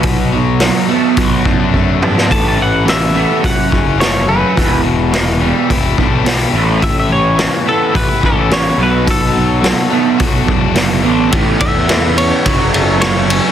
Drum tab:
RD |----------------|----------------|----------------|----------------|
HH |o---o---o-------|o---o---o---o---|o---o---o---o---|o---o---o---o---|
SD |----o----------o|----o-------o---|----o-------o---|----o-------o---|
T2 |--------------o-|----------------|----------------|----------------|
BD |o-------o-o-o---|o-------o-o-----|o-------o-o-----|o-------o-o-----|

RD |----------------|x-x-x-x-x-x-x-x-|
HH |o---o---o---o---|----------------|
SD |----o-------o---|----o-------o---|
T2 |----------------|----------------|
BD |o-------o-o-----|o-o-----o-------|